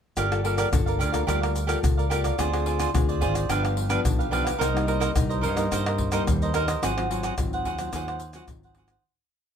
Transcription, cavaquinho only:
0.17 G4 A#4 D5 F5
0.44 G4 A#4 D5 F5
0.57 G4 A#4 D5 F5
0.86 A#4 D5 F5
0.99 G4 A#4 D5 F5
1.12 A#4 D5 F5
1.27 G4 A#4 D5 F5
1.41 A#4 D5 F5
1.67 G4 A#4 D5 F5
1.97 A#4 D5 F5
2.10 G4 A#4 D5 F5
2.24 A#4 D5 F5
2.38 F4 G#4 C5 D5
2.66 F4 G#4 C5 D5
2.80 F4 G#4 C5 D5
3.09 G#4 C5 D5
3.21 F4 G#4 C5 D5
3.34 G#4 C5 D5
3.49 D4 G4 B4 F5
3.63 G4 B4 F5
3.89 D4 G4 B4 F5
4.19 G4 B4 F5
4.31 D4 G4 B4 F5
4.45 G4 B4 F5
4.58 D#4 A#4 C5 D#5
4.87 D#4 A#4 C5 D#5
5.00 D#4 A#4 C5 D#5
5.29 A#4 C5 D#5
5.41 D#4 A#4 C5 D#5
5.56 A#4 C5 D#5
5.71 D#4 A#4 C5 D#5
5.86 A#4 C5 D#5
6.13 D#4 A#4 C5 D#5
6.42 A#4 C5 D#5
6.54 D#4 A#4 C5 D#5
6.67 A#4 C5 D#5
6.83 F#4 G#4 C5 F#5
7.10 F#4 G#4 C5 F#5
7.24 F#4 G#4 C5 F#5
7.54 G#4 C5 F#5
7.66 F#4 G#4 C5 F#5
7.78 G#4 C5 F#5
7.94 F#4 G#4 C5 F#5
8.08 G#4 C5 F#5
8.34 F#4 G#4 C5 F#5
8.64 G#4 C5 F#5
8.77 F#4 G#4 C5 F#5
8.91 G#4 C5 F#5

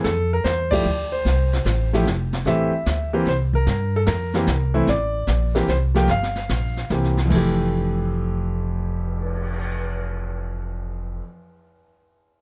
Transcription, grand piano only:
0.04 A4
0.33 A#4
0.44 C5
0.71 F3 A3 E4 G4 D5
1.12 C5
1.93 F3 A3 E4 G4
2.46 E3 A3 C4 G4 E5
3.13 E3 A#3 C4 G4
3.28 C5
3.55 A#4
3.96 A4
4.07 A#4
4.35 E3 A#3 C4 G4
4.74 E3 A3 C4 E4
4.89 D5
5.55 E3 A#3 C4 G4
5.69 C5
5.94 F3 A3 A#3 G4 G5
6.11 F5
6.90 E3 A#3 C4 G4
7.25 F2 E3
7.33 A3 G4

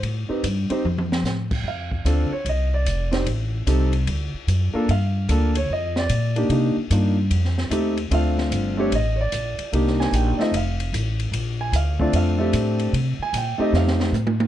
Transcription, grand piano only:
0.29 C4 D#4 G4 B4
0.70 C4 D#4 G4 C5
1.68 F5
2.05 C4 D4 F4 A4
2.33 C#5
2.49 D#5
2.74 D5
3.11 C4 D#4 G4 C5
3.67 C4 D#4 G4 A4
4.73 A#3 D4 F4 A4
4.91 F5
5.29 A#3 D4 F4 A4
5.57 C#5
5.73 D#5
5.99 D5
6.36 A#3 D4 D#4 G4
6.50 A#3 D4 D#4 G4
6.91 A#3 D4 D#4 F4
7.70 A3 C4 D#4 G4
8.11 A3 C4 D4 F4 F5
8.77 A3 C4 D4 G4 C#5
8.95 D#5
9.16 C#5
9.21 D5
9.73 A#3 D4 D#4 G4
10.00 G#5
10.15 G5
10.37 A3 C4 D#4 F4 D5
10.42 D#5
10.57 F5
11.61 G#5
11.76 F5
11.99 A3 C4 D4 F4 D5
12.16 F5
12.38 A3 C4 D4 G4
13.23 G#5
13.37 G5
13.58 A3 C4 D#4 G4 D#5
13.76 F5

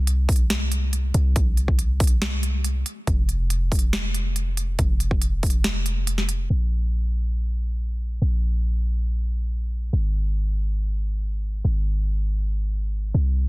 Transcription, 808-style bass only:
Already playing: C2
1.15 C2
3.07 F1
4.79 F1
6.50 A#1
8.22 A#1
9.93 G#1
11.65 G#1
13.14 C2

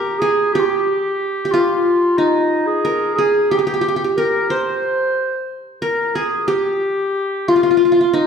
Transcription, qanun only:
Already playing: G4 A#4
0.22 G#4
0.55 G4
1.45 G4
1.54 F4
2.18 D#4
2.85 A#4
3.18 G#4
3.51 G4
3.59 G4
3.67 G4
3.74 G4
3.81 G4
3.88 G4
3.96 G4
4.04 G4
4.18 A#4
4.50 C5
5.82 A#4
6.15 G#4
6.48 G4
7.48 F4
7.56 F4
7.63 F4
7.71 F4
7.77 F4
7.85 F4
7.92 F4
8.01 F4
8.13 D#4

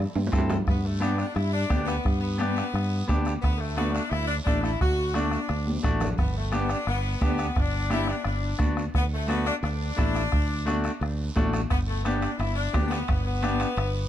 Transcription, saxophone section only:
0.67 B3
0.84 A3
1.02 B3
1.18 D4
1.35 E4
1.52 D4
1.86 B3
2.20 B3
3.40 B3
3.58 A3
3.76 B3
3.92 D4
4.09 E4
4.27 D4
4.44 D4
4.62 E4
4.80 F#4
5.15 D4
6.18 B3
6.36 A3
6.54 B3
6.71 D4
6.88 B3
7.23 B3
7.58 D4
7.91 E4
8.09 D4
8.25 D4
8.95 B3
9.13 A3
9.29 B3
9.46 D4
9.63 D4
11.70 B3
11.88 A3
12.04 B3
12.21 D4
12.38 E4
12.55 D4
12.88 B3
13.24 B3

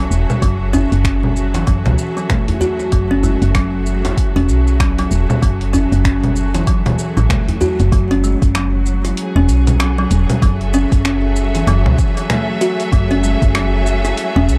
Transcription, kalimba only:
0.00 F#3
0.42 F#3
0.73 C#4
1.04 C#4
1.54 E3
1.67 F#3
1.86 E3
2.17 F#3
2.30 A3
2.61 F#4
2.92 F#3
3.11 C#4
3.23 G#3
3.55 F#3
4.05 E4
4.36 C#4
4.80 F#3
4.99 F#3
5.42 F#3
5.73 C#4
6.05 C#4
6.55 E3
6.67 F#3
6.86 E3
7.17 F#3
7.30 A3
7.61 F#4
7.92 F#3
8.11 C#4
8.24 G#3
8.55 F#3
9.05 E4
9.36 C#4
9.80 F#3
9.98 F#3
10.42 F#3
10.74 C#4
11.05 C#4
11.55 E3
11.67 F#3
11.86 E3
12.17 F#3
12.30 A3
12.61 F#4
12.92 F#3
13.11 C#4
13.23 G#3
13.55 F#3
14.05 E4
14.36 C#4

